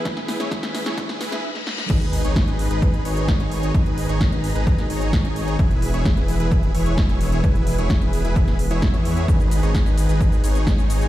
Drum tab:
CC |----------------|x---------------|----------------|----------------|
RD |----------------|----------------|----------------|----------------|
HH |x-oxxxoxx-ox----|xxoxxxoxxxoxxxox|xxoxxxoxxxoxxxox|xxoxxxoxxxoxxxox|
SH |----------------|----------------|----------------|----------------|
SD |oooooooooooo-ooo|----o-------o---|----o----o--o---|----o-------o---|
BD |o---o---o-------|o---o---o---o---|o---o---o---o---|o---o---o---o---|

CC |----------------|----------------|
RD |----------------|--x---x---x---x-|
HH |xxoxxxoxxxoxxxox|xxoxxxoxxxoxxxox|
SH |----------------|xxxxxxxxxxxxxxxx|
SD |----o----o--o---|----o-------o---|
BD |o---o---o---o---|o---o---o---o---|